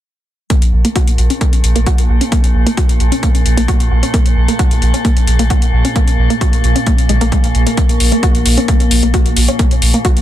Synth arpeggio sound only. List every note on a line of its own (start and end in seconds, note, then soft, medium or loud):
0.50 0.57 A#3 medium
0.85 0.89 A#3 medium
0.96 0.98 F#4 loud
1.30 1.33 C#4 medium
1.41 1.48 A#3 medium
1.76 1.80 A#3 medium
1.87 1.89 F#4 loud
2.21 2.24 C#4 medium
2.32 2.38 A#3 medium
2.67 2.71 A#3 medium
2.77 2.80 F#4 loud
3.12 3.14 C#4 medium
3.23 3.29 A#3 medium
3.57 3.61 A#3 medium
3.68 3.71 F#4 loud
4.03 4.05 C#4 medium
4.14 4.20 A#3 medium
4.48 4.52 A#3 medium
4.59 4.62 F#4 loud
4.94 4.96 C#4 medium
5.05 5.11 A#3 medium
5.39 5.43 A#3 medium
5.50 5.53 F#4 loud
5.85 5.87 C#4 medium
5.96 6.02 A#3 medium
6.30 6.34 A#3 medium
6.41 6.44 F#4 loud
6.76 6.78 C#4 medium
6.87 6.93 A#3 medium
7.09 7.14 G#3 medium
7.21 7.25 A#3 loud
7.32 7.36 G#3 medium
7.67 7.71 A#3 medium
7.78 7.84 A#3 medium
8.12 8.16 A#3 medium
8.23 8.26 F#4 loud
8.58 8.60 C#4 medium
8.68 8.75 A#3 medium
9.03 9.07 A#3 medium
9.14 9.16 F#4 loud
9.48 9.51 C#4 medium
9.59 9.66 A#3 medium
9.94 9.98 A#3 medium
10.05 10.07 F#4 loud